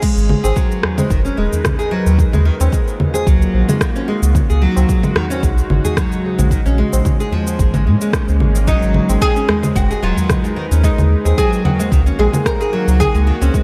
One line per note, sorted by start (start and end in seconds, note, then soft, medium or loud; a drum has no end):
0.02 0.42 G#3 loud
0.02 2.17 G#3 medium
0.02 2.17 D#4 medium
0.02 2.17 A#4 medium
0.02 2.17 B4 medium
0.02 kick loud
0.02 crash loud
0.02 shaker medium
0.17 0.34 G#1 loud
0.17 shaker soft
0.29 low conga medium
0.44 0.52 G#1 medium
0.44 0.56 G#4 medium
0.44 tabla na medium
0.44 tabla tin medium
0.44 shaker medium
0.56 0.96 F#3 loud
0.56 kick loud
0.56 shaker medium
0.72 shaker soft
0.83 cross-stick medium
0.83 tabla ge medium
0.98 1.09 G#3 loud
0.98 tabla tin medium
0.98 low conga medium
0.98 shaker medium
1.10 1.29 F#1 medium
1.10 1.19 D#3 medium
1.10 kick loud
1.10 shaker medium
1.25 1.37 C#4 medium
1.25 shaker soft
1.37 1.47 D#1 medium
1.37 1.78 G#3 loud
1.53 tabla ge medium
1.53 shaker medium
1.65 kick loud
1.65 cross-stick medium
1.65 low conga medium
1.65 shaker medium
1.79 1.91 G#4 loud
1.79 shaker soft
1.91 2.19 F#3 loud
1.91 tabla tin soft
2.06 2.23 D#2 medium
2.06 tabla na soft
2.06 tabla tin soft
2.06 shaker medium
2.18 4.33 D#3 medium
2.18 4.33 A#3 medium
2.18 4.33 F4 medium
2.18 6.47 F#4 medium
2.18 kick loud
2.18 shaker medium
2.33 2.50 D#2 loud
2.33 2.45 G#3 medium
2.33 low conga medium
2.33 shaker soft
2.45 2.54 D#3 loud
2.60 2.69 D#2 medium
2.60 2.72 C#4 loud
2.60 tabla na medium
2.60 tabla tin medium
2.60 shaker medium
2.72 3.13 G#3 medium
2.72 kick loud
2.72 shaker medium
2.88 shaker soft
3.00 low conga medium
3.00 tabla ge medium
3.14 3.26 G#4 loud
3.14 tabla na soft
3.14 tabla tin medium
3.14 shaker medium
3.27 3.45 C#2 medium
3.27 3.67 F#3 medium
3.27 kick loud
3.27 shaker medium
3.42 shaker soft
3.54 3.64 A#1 medium
3.54 tabla tin medium
3.69 3.80 G#3 medium
3.69 low conga medium
3.69 shaker medium
3.81 3.89 D#3 medium
3.81 kick loud
3.81 cross-stick medium
3.81 shaker medium
3.96 4.07 C#4 loud
3.96 tabla tin soft
3.96 shaker soft
4.08 4.35 G#3 loud
4.22 4.39 C#2 medium
4.22 tabla tin soft
4.22 shaker medium
4.35 6.49 C#3 medium
4.35 10.80 G#3 medium
4.35 6.49 D#4 medium
4.35 kick loud
4.35 low conga medium
4.35 shaker medium
4.50 4.67 C#2 medium
4.50 4.62 G#4 loud
4.50 shaker soft
4.62 5.02 F#3 loud
4.76 4.85 C#2 medium
4.76 tabla na medium
4.76 tabla tin medium
4.76 shaker medium
4.89 kick loud
4.89 shaker medium
5.03 5.15 G#3 medium
5.03 low conga medium
5.03 shaker soft
5.15 5.24 D#3 loud
5.15 cross-stick medium
5.15 tabla ge medium
5.30 5.42 C#4 loud
5.30 tabla tin medium
5.30 shaker medium
5.43 5.62 B1 medium
5.43 5.83 G#3 loud
5.43 kick loud
5.43 shaker medium
5.58 shaker soft
5.70 5.80 G#1 medium
5.70 low conga medium
5.84 5.97 G#4 loud
5.84 tabla ge medium
5.84 shaker medium
5.97 6.37 F#3 loud
5.97 kick loud
5.97 cross-stick medium
5.97 shaker medium
6.12 shaker soft
6.25 tabla tin soft
6.38 6.56 A#1 medium
6.38 6.50 G#3 medium
6.38 tabla na soft
6.38 tabla tin soft
6.38 low conga medium
6.38 shaker medium
6.51 6.60 D#3 loud
6.51 8.66 A#3 medium
6.51 8.66 C#4 medium
6.51 kick loud
6.51 shaker medium
6.66 6.83 A#1 loud
6.66 6.78 C#4 loud
6.66 shaker soft
6.78 7.18 G#3 loud
6.93 7.01 A#1 medium
6.93 tabla na medium
6.93 tabla tin medium
6.93 shaker medium
7.05 kick loud
7.05 low conga medium
7.05 shaker medium
7.20 7.32 G#4 loud
7.20 shaker soft
7.32 7.73 F3 loud
7.32 tabla ge medium
7.47 tabla na soft
7.47 tabla tin medium
7.47 shaker medium
7.59 7.88 G#1 medium
7.59 kick loud
7.59 shaker medium
7.74 7.85 G#3 medium
7.74 low conga medium
7.74 shaker soft
7.86 7.96 A#2 loud
7.86 7.95 G#3 medium
7.86 tabla tin soft
8.01 8.13 G#3 medium
8.01 shaker medium
8.13 8.22 D#3 medium
8.13 kick loud
8.13 cross-stick medium
8.13 shaker medium
8.28 8.42 C#2 medium
8.28 tabla tin soft
8.28 shaker soft
8.40 8.74 G#1 medium
8.40 low conga medium
8.55 8.67 A#3 medium
8.55 tabla na soft
8.55 tabla tin soft
8.55 shaker medium
8.67 9.08 F#3 loud
8.67 9.21 D#4 medium
8.67 10.82 D#4 medium
8.67 10.82 A#4 medium
8.67 10.82 B4 medium
8.67 kick loud
8.67 shaker medium
8.83 8.99 G#1 medium
8.83 shaker soft
8.94 low conga medium
9.09 9.17 G#1 medium
9.09 9.20 G#3 medium
9.09 tabla na medium
9.09 tabla tin medium
9.09 shaker medium
9.21 9.30 D#3 loud
9.21 9.76 G#4 loud
9.21 kick loud
9.21 shaker medium
9.36 9.48 C#4 medium
9.36 shaker soft
9.48 9.89 G#3 loud
9.48 cross-stick medium
9.48 tabla ge medium
9.63 tabla tin medium
9.63 low conga medium
9.63 shaker medium
9.76 9.94 F#1 medium
9.76 10.01 F#4 loud
9.76 kick loud
9.76 shaker medium
9.91 10.02 G#4 loud
9.91 shaker soft
10.02 10.12 D#1 medium
10.02 10.43 F#3 loud
10.02 10.53 F4 medium
10.17 tabla ge medium
10.17 shaker medium
10.30 kick loud
10.30 cross-stick medium
10.30 low conga medium
10.30 shaker medium
10.44 10.55 G#3 loud
10.44 shaker soft
10.56 10.65 D#3 loud
10.56 tabla tin soft
10.71 10.88 D#2 medium
10.71 10.83 C#4 medium
10.71 tabla na soft
10.71 tabla tin soft
10.71 shaker medium
10.83 12.98 D#3 medium
10.83 11.24 G#3 loud
10.83 12.98 A#3 medium
10.83 11.38 D#4 medium
10.83 13.63 F#4 medium
10.83 12.98 F5 medium
10.83 kick loud
10.83 shaker medium
10.98 11.15 D#2 loud
10.98 low conga medium
10.98 shaker soft
11.25 11.34 D#2 medium
11.25 11.37 G#4 loud
11.25 tabla na medium
11.25 tabla tin medium
11.25 shaker medium
11.38 11.78 F#3 loud
11.38 11.65 G#4 loud
11.38 kick loud
11.38 shaker medium
11.53 shaker soft
11.65 12.19 F#4 medium
11.65 tabla ge medium
11.65 low conga medium
11.79 11.91 G#3 loud
11.79 tabla na soft
11.79 tabla tin medium
11.79 shaker medium
11.92 12.10 C#2 medium
11.92 12.00 D#3 loud
11.92 kick loud
11.92 shaker medium
12.06 12.18 C#4 loud
12.06 shaker soft
12.19 12.28 A#1 medium
12.19 12.59 G#3 loud
12.19 12.46 G#4 medium
12.19 tabla tin soft
12.34 low conga medium
12.34 shaker medium
12.46 12.85 A#4 medium
12.46 kick loud
12.46 cross-stick medium
12.46 shaker medium
12.60 12.72 G#4 loud
12.60 tabla tin soft
12.60 shaker soft
12.73 13.00 F#3 loud
12.88 13.05 C#2 medium
12.88 tabla tin soft
12.88 shaker medium
13.00 13.63 C#3 medium
13.00 13.63 G#3 medium
13.00 13.63 D#4 medium
13.00 13.63 G#4 loud
13.00 kick medium
13.00 low conga medium
13.00 shaker soft
13.15 13.32 C#2 loud
13.15 13.26 G#3 loud
13.15 shaker soft
13.27 13.35 D#3 loud
13.41 13.50 C#2 medium
13.41 13.53 C#4 loud
13.41 tabla na medium
13.41 tabla tin medium
13.41 shaker medium
13.54 13.63 G#3 loud
13.54 kick loud
13.54 shaker medium